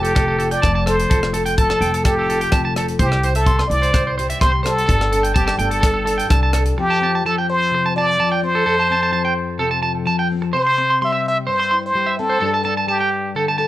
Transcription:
Already playing: F1 F2 F3 C4 F4 G4 A4
0.03 A4, closed hi-hat
0.15 C3 A4, kick, cross-stick, closed hi-hat
0.28 A4
0.39 F4 A4, closed hi-hat
0.51 D5 G5, closed hi-hat
0.62 F1 F3 C4 A5, kick, cross-stick, closed hi-hat
0.75 A5
0.86 A4 C5, cross-stick, closed hi-hat
1.00 closed hi-hat
1.10 F1 F2 C4 F4 A4, kick, closed hi-hat
1.14 A4
1.23 cross-stick
1.34 A4, closed hi-hat
1.46 G5, closed hi-hat
1.58 F3 C4 A4 A5, kick, closed hi-hat
1.70 A5, cross-stick
1.81 F1 G5, closed hi-hat
1.94 A4, closed hi-hat
2.04 C3 G4 A4, kick, cross-stick, closed hi-hat
2.19 A4
2.30 F4 A4, closed hi-hat
2.41 G5, closed hi-hat
2.52 F1 F3 C4 A5, kick, cross-stick, closed hi-hat
2.65 A5
2.76 A4, cross-stick, closed hi-hat
2.88 closed hi-hat
2.99 C2 C3 C4 E4 G4 C5, kick, closed hi-hat
3.12 cross-stick
3.23 E4 C5, closed hi-hat
3.35 A4 E5, closed hi-hat
3.46 G3 C4 C6, kick, closed hi-hat
3.59 C6, cross-stick
3.67 C2 D5, closed hi-hat
3.72 E4
3.82 C5, closed hi-hat
3.93 G2 C5, kick, cross-stick, closed hi-hat
4.07 C5
4.18 G4 C5, closed hi-hat
4.30 E5, closed hi-hat
4.41 C2 G3 C4 C5 C6, kick, cross-stick, closed hi-hat
4.52 C6
4.63 G4 A4 C5, cross-stick, closed hi-hat
4.78 closed hi-hat
4.86 G1 G2 D4 A4, kick, closed hi-hat
5.01 cross-stick
5.12 D4 A4, closed hi-hat
5.23 G5, closed hi-hat
5.34 G3 C4 G4 A5, kick, closed hi-hat
5.47 D4 A5, cross-stick
5.59 G1 D4 A4 G5, closed hi-hat
5.71 A4, closed hi-hat
5.81 A4, muted nylon-string guitar stroke, kick, cross-stick, closed hi-hat
5.94 A4
6.06 D4 A4, closed hi-hat
6.18 G5, closed hi-hat
6.29 C2 G3 D4 A5, kick, cross-stick, closed hi-hat
6.43 A5
6.53 A4, cross-stick, closed hi-hat
6.66 closed hi-hat
6.77 F2 F3 C4 F4 G4, muted clean electric guitar stroke
6.90 A5
7.01 C4 A5
7.15 A5
7.25 F3 A4 A5
7.38 G5
7.50 C5
7.71 C3, muted clean electric guitar stroke
7.86 A5
7.96 F4 D5 A5
8.20 F3 A5
8.32 G5
8.43 C4 C5
8.55 A4
8.66 F2 A4
8.80 A5
8.90 C4 A5
9.03 A5
9.12 F3 A5
9.25 G5
9.59 C3 A4
9.71 A5
9.83 F4 A5
10.06 F3 A5
10.19 G5
10.32 C4
10.42 muted clean electric guitar stroke
10.53 C3 C5
10.58 C5
10.67 C6
10.78 C4, muted clean electric guitar stroke
10.90 C6
11.02 G3 E5 C6
11.12 E5
11.28 E5
11.47 G2 C5
11.51 C5
11.60 C6
11.71 E4 C6
11.86 C5
11.95 G3
12.06 E5
12.19 C4 A4
12.30 C5
12.40 G2 G3 D4 A4
12.54 A5
12.64 D4 A4 A5
12.77 A5
12.88 G3 G4 A5
13.01 G5
13.35 D3 A4
13.48 A5
13.58 A4 A5

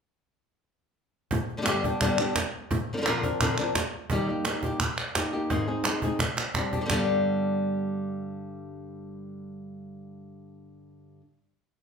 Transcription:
1.31 muted nylon-string guitar stroke, cajon bass
1.49 cajon slap
1.57 D3 G3 B3 D4 G4
1.62 D3 G3 B3 D4 G4, clap
1.66 G2 D3 G3 B3 D4 G4, cajon slap
1.84 G3 B3 D4 G4, cajon bass
2.01 G2 D3 G3 B3 D4 G4, cajon bass, clap
2.18 G3 B3 D4 G4, clap
2.36 muted nylon-string guitar stroke, cajon bass, cajon slap, clap
2.71 muted nylon-string guitar stroke, cajon bass
2.93 D3 F3 C4 D4 A#4
2.97 D3 F3 C4 D4 A#4
3.02 D3 F3 C4 D4 A#4
3.06 A#2 D3 F3 C4 D4 A#4, cajon slap, clap
3.23 F3 C4 D4 A#4, cajon bass
3.40 A#2 D3 F3 C4 D4 A#4, cajon bass, clap
3.58 F3 C4 D4 A#4, cajon slap, clap
3.75 muted nylon-string guitar stroke, cajon bass, cajon slap, clap
4.10 D#3 G3 A#3 D#4 G4, cajon bass
4.29 A#3 D#4 G4
4.45 G3 A#3 D#4 G4, cajon slap, clap
4.63 A#3 D#4 G4, cajon bass
4.80 muted nylon-string guitar stroke, cajon bass, clap
4.98 clap
5.15 A#3 D#4 G4, cajon bass, cajon slap, clap
5.33 A#3 D#4 G4
5.50 G#2 D#3 G#3 C4 D#4 G#4, cajon bass, cajon slap
5.67 G#3 C4 D#4 G#4, cajon slap
5.84 G#3 C4 D#4 G#4, cajon slap, clap
6.02 G#3 C4 D#4 G#4, cajon bass
6.19 muted nylon-string guitar stroke, cajon bass, clap
6.37 cajon slap, clap
6.54 G3 C4 D4 G4, cajon bass, clap
6.73 G3 C4 D4 G4, cajon bass
6.81 D3 G3 B3 D4 G4
6.86 D3 G3 B3 D4 G4
6.90 G2 D3 G3 B3 D4 G4, cajon bass, clap

